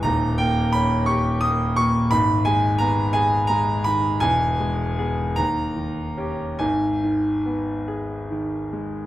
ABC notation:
X:1
M:6/8
L:1/8
Q:3/8=54
K:G#m
V:1 name="Grand piano"
a =g b c' d' c' | b g a g a b | g3 a3 | g3 z3 |]
V:2 name="Grand piano" clef=bass
[D,,,D,,] A, C =G A, A,, | [G,,,G,,] G, B, G G, D, | [E,,,E,,] G, [B,G] D,, D, [C=G] | [G,,,G,,] D, B, G D, G, |]